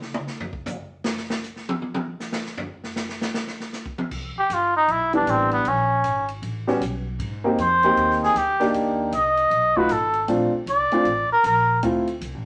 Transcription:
0.02 snare soft
0.14 mid tom loud
0.27 snare medium
0.40 floor tom medium
0.53 kick medium
0.66 floor tom loud
0.66 hi-hat pedal medium
1.04 snare loud
1.17 snare medium
1.30 snare loud
1.43 hi-hat pedal medium
1.56 snare soft
1.69 high tom medium
1.82 high tom medium
1.94 high tom loud
2.20 snare medium
2.20 hi-hat pedal medium
2.32 snare loud
2.45 snare soft
2.58 floor tom loud
2.84 snare medium
2.96 snare medium
2.96 hi-hat pedal medium
3.09 snare medium
3.21 snare loud
3.34 snare medium
3.47 snare medium
3.60 snare soft
3.73 snare medium
3.73 hi-hat pedal medium
3.86 kick medium
3.98 high tom medium
4.11 4.34 C2 medium
4.11 kick medium
4.11 crash medium
4.36 4.55 G4 medium
4.36 muted upright bass stroke soft
4.50 4.87 G1 medium
4.50 4.76 F4 medium
4.50 hi-hat pedal medium
4.50 ride medium
4.76 4.93 D#4 medium
4.88 5.25 B1 medium
4.88 5.14 E4 medium
4.88 ride soft
5.13 5.63 E3 medium
5.13 5.63 G3 medium
5.13 5.64 B3 medium
5.13 5.64 D4 medium
5.13 5.31 D4 medium
5.13 ride soft
5.26 5.64 A1 medium
5.26 5.52 C4 medium
5.26 hi-hat pedal medium
5.26 ride medium
5.51 5.70 B3 medium
5.51 ride soft
5.65 6.02 A#1 medium
5.65 6.30 C#4 medium
5.65 ride medium
6.04 6.41 G#1 medium
6.04 hi-hat pedal medium
6.04 ride medium
6.28 ride soft
6.42 6.80 A1 medium
6.42 ride medium
6.67 6.80 G3 medium
6.67 6.80 B3 medium
6.67 6.80 C#4 medium
6.67 6.81 F#4 medium
6.67 snare soft
6.80 7.18 B1 medium
6.80 hi-hat pedal medium
6.80 ride medium
7.19 7.57 G#2 medium
7.19 ride medium
7.44 7.57 A#3 medium
7.44 7.57 C4 medium
7.44 7.57 D#4 medium
7.44 7.58 G4 medium
7.58 7.95 F2 medium
7.58 8.19 C5 medium
7.58 hi-hat pedal medium
7.58 ride medium
7.83 8.33 A#3 medium
7.83 8.33 C4 medium
7.83 8.33 D#4 medium
7.83 8.34 G4 medium
7.83 ride soft
7.96 8.34 D#2 medium
7.96 ride medium
8.10 snare soft
8.23 8.39 G#4 medium
8.23 snare soft
8.34 8.72 D2 loud
8.34 8.75 G4 medium
8.34 hi-hat pedal medium
8.34 ride medium
8.60 9.10 A#3 medium
8.60 9.10 D4 medium
8.60 9.10 D#4 medium
8.60 9.10 G4 medium
8.60 snare soft
8.60 ride soft
8.73 9.11 D#2 medium
8.73 ride medium
9.11 9.49 C2 medium
9.11 9.79 D#5 medium
9.11 hi-hat pedal medium
9.11 ride medium
9.37 ride soft
9.51 9.88 B1 medium
9.51 ride soft
9.75 9.89 A3 medium
9.75 9.89 D#4 medium
9.75 9.89 F4 medium
9.75 9.89 F#4 medium
9.75 9.93 B4 medium
9.75 kick medium
9.89 10.27 G#1 medium
9.89 10.29 A4 medium
9.89 hi-hat pedal medium
9.89 ride medium
10.13 ride soft
10.28 10.51 A#1 medium
10.28 10.50 A3 medium
10.28 10.50 C4 medium
10.28 10.51 D4 medium
10.28 10.51 F4 medium
10.28 ride medium
10.53 muted upright bass stroke soft
10.66 10.89 C2 medium
10.66 11.27 D5 medium
10.66 hi-hat pedal medium
10.66 ride medium
10.91 11.04 A3 medium
10.91 11.05 C4 medium
10.91 11.05 D4 medium
10.91 11.05 F4 medium
10.91 muted upright bass stroke soft
10.91 ride soft
11.05 11.28 A1 medium
11.05 ride medium
11.29 11.44 A#4 medium
11.29 muted upright bass stroke soft
11.44 11.81 A#1 medium
11.44 11.81 A#4 medium
11.44 hi-hat pedal medium
11.44 ride medium
11.83 12.20 D2 medium
11.83 12.05 A3 medium
11.83 12.05 C4 soft
11.83 12.05 E4 medium
11.83 12.06 F4 medium
11.83 ride medium
12.07 ride soft
12.21 12.34 C2 medium
12.21 hi-hat pedal medium
12.21 ride medium
12.34 12.45 A1 medium

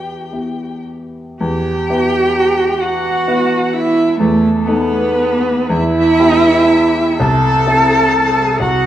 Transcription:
0.00 1.41 E2 soft
0.00 0.29 B3 soft
0.00 0.29 E4 soft
0.00 0.29 G4 soft
0.00 0.88 G4 medium
0.00 0.83 G5 medium
0.32 1.35 B3 soft
0.32 1.36 E4 soft
0.32 1.36 G4 soft
1.40 1.87 E2 medium
1.40 2.83 G4 loud
1.40 2.82 G5 loud
1.90 3.23 B3 medium
1.90 3.23 E4 medium
1.90 3.23 B4 medium
2.80 3.75 F#4 loud
2.80 3.74 F#5 medium
3.28 4.15 B3 soft
3.28 4.15 E4 medium
3.28 4.16 B4 medium
3.73 4.19 E4 loud
3.73 4.18 E5 medium
4.19 4.66 E2 medium
4.19 4.67 A3 medium
4.19 4.69 A4 medium
4.66 5.71 B3 loud
4.66 5.66 B3 medium
4.66 5.67 D#4 medium
4.66 5.67 A4 medium
4.66 5.72 B4 medium
5.69 6.18 E2 medium
5.69 7.19 E4 loud
5.69 7.22 E5 loud
6.19 7.16 B3 medium
6.19 7.16 E4 medium
6.19 7.16 G4 medium
7.20 7.65 C2 medium
7.20 8.62 A4 loud
7.20 8.60 A5 loud
7.66 8.56 C4 medium
7.66 8.57 E4 medium
7.66 8.56 A4 medium
8.60 8.86 C2 medium
8.60 8.86 F#4 loud
8.60 8.86 F#5 loud

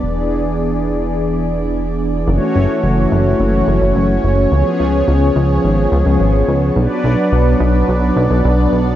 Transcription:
0.00 2.25 E1 medium
0.00 2.25 E3 medium
0.00 2.24 B3 medium
0.00 2.24 D4 medium
0.00 2.25 G#4 medium
0.00 2.24 D5 medium
2.28 2.39 F#1 loud
2.28 4.50 E3 medium
2.28 4.50 A3 medium
2.28 6.72 C#4 medium
2.28 4.50 F#4 medium
2.28 6.72 C#5 medium
2.56 2.67 F#1 loud
2.84 3.07 F#1 medium
3.12 3.35 F#1 loud
3.40 3.63 F#1 loud
3.68 3.79 F#1 loud
3.82 3.93 F#1 medium
3.96 4.19 F#1 loud
4.24 4.47 F#1 medium
4.52 4.63 C#2 medium
4.52 6.74 F3 medium
4.52 8.96 B3 medium
4.52 6.74 G#4 medium
4.80 5.03 C#2 medium
5.08 5.31 C#2 medium
5.36 5.59 C#2 loud
5.64 5.87 G#1 medium
5.92 6.04 C#2 loud
6.06 6.18 C#2 medium
6.20 6.43 G#1 medium
6.48 6.71 C#2 medium
6.76 6.88 B1 loud
6.76 8.96 F#3 medium
6.76 8.96 D4 medium
6.76 8.96 B4 medium
6.76 8.96 D5 medium
7.04 7.16 B1 loud
7.32 7.55 B1 medium
7.60 7.83 B1 loud
7.88 8.11 B1 loud
8.16 8.28 B1 loud
8.30 8.42 B1 medium
8.44 8.67 B1 loud
8.72 8.95 B1 medium

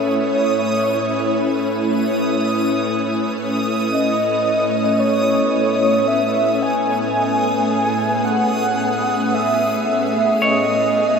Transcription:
0.00 11.20 A2 medium
0.00 11.20 A3 medium
0.00 11.20 C#4 medium
0.00 6.79 E4 medium
0.00 11.20 B4 medium
0.00 1.73 C#5 medium
0.00 11.20 D#6 medium
3.92 5.01 D#5 loud
4.84 11.20 B3 medium
5.00 6.09 C#5 medium
6.07 6.64 E5 loud
6.62 8.24 G#5 loud
7.23 11.20 G#4 medium
8.25 9.36 F#5 loud
9.34 10.46 E5 medium
10.42 11.20 C#5 medium
10.42 11.20 D#5 loud

